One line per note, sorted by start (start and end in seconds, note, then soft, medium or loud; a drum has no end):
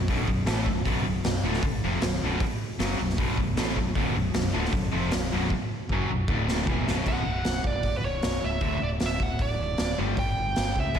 0.08 0.27 B0 medium
0.08 0.26 B1 medium
0.08 0.26 F#2 medium
0.08 0.28 B2 medium
0.08 kick loud
0.08 open hi-hat medium
0.27 0.46 B0 medium
0.27 0.43 B1 medium
0.27 0.43 F#2 medium
0.27 kick medium
0.46 0.65 A1 loud
0.46 0.66 A2 medium
0.46 0.66 E3 medium
0.46 0.66 A3 loud
0.46 snare loud
0.46 open hi-hat medium
0.66 0.84 B0 medium
0.66 0.82 B1 medium
0.66 0.82 F#2 medium
0.66 kick medium
0.85 1.04 B0 medium
0.85 1.05 B1 medium
0.85 1.05 F#2 medium
0.85 1.06 B2 loud
0.85 kick medium
0.85 open hi-hat soft
1.06 1.23 B0 medium
1.06 1.21 B1 medium
1.06 1.22 F#2 medium
1.24 1.42 B0 medium
1.24 1.41 B1 medium
1.24 1.41 F#2 medium
1.24 snare loud
1.24 open hi-hat medium
1.43 1.62 D1 medium
1.43 1.63 D2 medium
1.43 1.63 A2 medium
1.43 1.64 D3 loud
1.54 snare soft
1.62 1.81 B0 medium
1.62 1.80 B1 medium
1.62 1.80 F#2 medium
1.62 kick loud
1.62 open hi-hat soft
1.84 2.02 F1 medium
1.84 2.02 F2 medium
1.84 2.03 C3 loud
1.84 2.03 F3 loud
2.01 2.20 B0 medium
2.01 2.19 B1 medium
2.01 2.19 F#2 medium
2.01 snare loud
2.01 open hi-hat medium
2.23 2.40 B0 medium
2.23 2.42 B1 medium
2.23 2.42 F#2 medium
2.23 2.42 B2 loud
2.40 kick loud
2.40 open hi-hat medium
2.79 2.98 F#1 medium
2.79 2.98 F#2 medium
2.79 2.99 C#3 medium
2.79 2.99 F#3 loud
2.79 snare loud
2.79 open hi-hat medium
2.99 3.17 B0 medium
2.99 3.15 B1 medium
2.99 3.15 F#2 medium
3.10 snare soft
3.18 3.37 B0 medium
3.18 3.37 B1 medium
3.18 3.38 F#2 medium
3.18 3.38 B2 loud
3.18 kick loud
3.18 open hi-hat medium
3.37 3.56 B0 medium
3.37 3.54 B1 medium
3.37 3.54 F#2 medium
3.37 kick medium
3.57 3.75 A1 medium
3.57 3.76 A2 medium
3.57 3.76 E3 loud
3.57 3.77 A3 medium
3.57 snare loud
3.57 open hi-hat soft
3.76 3.95 B0 medium
3.76 3.93 B1 medium
3.76 3.93 F#2 medium
3.76 kick medium
3.95 4.14 B0 medium
3.95 4.15 B1 medium
3.95 4.16 F#2 medium
3.95 4.16 B2 loud
3.95 kick medium
3.95 open hi-hat soft
4.14 4.33 B0 medium
4.14 4.31 B1 medium
4.14 4.32 F#2 medium
4.34 4.53 B0 medium
4.34 4.50 B1 medium
4.34 4.51 F#2 medium
4.34 snare loud
4.34 open hi-hat medium
4.53 4.72 D1 medium
4.53 4.72 D2 medium
4.53 4.73 A2 loud
4.53 4.73 D3 loud
4.65 snare soft
4.72 4.91 B0 medium
4.72 4.89 B1 medium
4.72 4.89 F#2 medium
4.72 kick loud
4.72 open hi-hat soft
4.92 5.12 F1 medium
4.92 5.11 F2 medium
4.92 5.12 C3 medium
4.92 5.12 F3 loud
5.11 5.31 B0 medium
5.11 5.28 B1 medium
5.11 5.28 F#2 medium
5.11 snare loud
5.11 open hi-hat medium
5.32 5.51 B0 loud
5.32 5.51 B1 medium
5.32 5.51 F#2 medium
5.32 5.51 B2 medium
5.50 kick medium
5.89 6.08 F#1 loud
5.89 6.10 F#2 medium
5.89 6.10 C#3 medium
5.89 6.10 F#3 loud
5.89 kick medium
6.10 6.27 B0 medium
6.10 6.25 B1 medium
6.10 6.26 F#2 medium
6.28 6.65 D1 medium
6.28 6.67 D2 medium
6.28 6.68 A2 medium
6.28 6.68 D3 medium
6.28 kick loud
6.49 snare medium
6.67 6.85 E1 medium
6.67 6.87 E2 medium
6.67 6.87 B2 loud
6.67 6.87 E3 medium
6.67 kick loud
6.87 7.06 B0 loud
6.87 7.05 B1 medium
6.87 7.06 F#2 medium
6.87 7.05 B2 medium
6.87 snare medium
7.06 7.23 B0 medium
7.06 7.22 B1 medium
7.06 7.22 F#2 medium
7.06 7.22 B2 medium
7.06 7.62 F#5 medium
7.06 kick medium
7.06 crash medium
7.26 7.43 B0 medium
7.44 7.62 B0 medium
7.44 snare loud
7.44 open hi-hat soft
7.64 7.81 B0 medium
7.64 7.97 D5 medium
7.64 kick medium
7.83 8.01 B0 medium
7.83 kick medium
7.83 open hi-hat soft
7.97 8.04 B4 medium
8.03 8.20 B0 medium
8.03 8.45 C#5 medium
8.22 8.41 B0 medium
8.22 snare loud
8.22 open hi-hat soft
8.44 8.61 C#1 medium
8.44 8.83 E5 medium
8.61 8.78 D1 medium
8.61 8.77 D2 medium
8.61 8.78 A2 medium
8.61 8.78 D3 medium
8.61 kick medium
8.61 open hi-hat soft
8.81 8.98 D1 medium
8.81 8.89 D5 medium
9.00 9.18 D1 medium
9.00 snare medium
9.00 open hi-hat soft
9.06 9.24 E5 medium
9.20 9.37 D1 medium
9.20 9.40 F#5 medium
9.20 kick medium
9.39 9.56 D1 medium
9.39 9.96 D5 medium
9.39 kick medium
9.39 open hi-hat soft
9.59 9.76 D1 medium
9.78 9.96 D1 medium
9.78 snare loud
9.78 open hi-hat medium
9.98 10.15 G1 medium
9.98 10.14 G2 medium
9.98 10.14 D3 medium
9.98 10.15 G3 medium
10.17 10.35 G1 medium
10.17 10.79 G5 loud
10.17 kick medium
10.17 open hi-hat soft
10.38 10.54 G1 medium
10.56 10.74 G1 medium
10.56 snare medium
10.56 open hi-hat soft
10.75 10.93 C#2 medium
10.75 kick medium
10.80 10.99 E5 medium
10.94 10.99 B0 medium
10.94 10.99 B1 medium
10.94 10.99 F#2 medium
10.94 10.99 B2 medium
10.94 kick medium
10.94 open hi-hat soft